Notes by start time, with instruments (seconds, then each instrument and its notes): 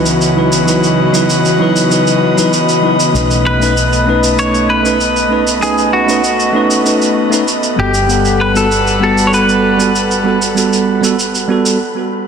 Already playing: fretless electric bass C#2, analog synth pad C#3 E3 B3 F#4 D#5, synth texture B4 B5
0.06 shaker
0.21 shaker
0.35 tine electric piano F#3 D#4 E4 B4
0.52 shaker
0.65 tine electric piano F#3 D#4 E4 B4, shaker
0.83 shaker
1.12 tine electric piano F#3 D#4 E4 B4, shaker
1.30 shaker
1.45 shaker
1.58 tine electric piano F#3 D#4 E4 B4
1.76 shaker
1.89 tine electric piano F#3 D#4 E4 B4, shaker
2.07 shaker
2.36 tine electric piano F#3 D#4 E4 B4, shaker
2.53 shaker
2.69 shaker
2.82 tine electric piano F#3 D#4 E4 B4
3.00 shaker
3.13 fretless electric bass B1, tine electric piano A3 C#4 D#4 B4, analog synth pad A3, shaker
3.31 shaker
3.47 clean electric guitar B4
3.59 tine electric piano A3 C#4 D#4 B4, shaker
3.77 shaker
3.93 shaker
4.06 tine electric piano A3 C#4 D#4 B4
4.23 shaker
4.37 tine electric piano A3 C#4 D#4, clean electric guitar C#5, shaker
4.54 shaker
4.70 clean electric guitar B4
4.83 tine electric piano A3 C#4 D#4 B4, shaker
5.00 shaker
5.16 shaker
5.29 tine electric piano A3 C#4 D#4 B4
5.47 shaker
5.60 tine electric piano A3 C#4 D#4 B4, clean electric guitar G#4, shaker
5.78 shaker
5.93 clean electric guitar F#4
6.06 tine electric piano A3 C#4 D#4, shaker
6.10 tine electric piano B4
6.24 shaker
6.40 shaker
6.52 tine electric piano A3 C#4 D#4 B4
6.71 shaker
6.83 tine electric piano A3 C#4 D#4, shaker
6.87 tine electric piano B4
7.02 shaker
7.30 tine electric piano A3 C#4 D#4 B4, shaker
7.48 shaker
7.63 shaker
7.76 fretless electric bass G1, tine electric piano G3 B3 F#4, analog synth pad G3 A4 B4 F#5, clean electric guitar G4
7.80 tine electric piano A4
7.94 shaker
8.07 tine electric piano G3 B3 A4 F#5, shaker
8.25 shaker
8.41 clean electric guitar B4
8.54 tine electric piano G3 B3 F#4 A4, clean electric guitar A4, shaker
8.71 shaker
8.87 shaker
9.00 tine electric piano G3 B3 F#4, clean electric guitar A4
9.04 tine electric piano A4
9.18 shaker
9.27 tine electric piano G3, clean electric guitar C#5
9.32 tine electric piano B3 F#4 A4, clean electric guitar B4, shaker
9.49 shaker
9.77 tine electric piano G3 B3 F#4 A4, shaker
9.95 shaker
10.11 shaker
10.24 tine electric piano G3 B3 F#4 A4
10.42 shaker
10.55 tine electric piano G3 B3 F#4 A4, shaker
10.73 shaker
11.01 tine electric piano G3 B3 F#4 A4, shaker
11.19 shaker
11.35 shaker
11.48 tine electric piano G3 B3 F#4
11.52 tine electric piano A4
11.66 shaker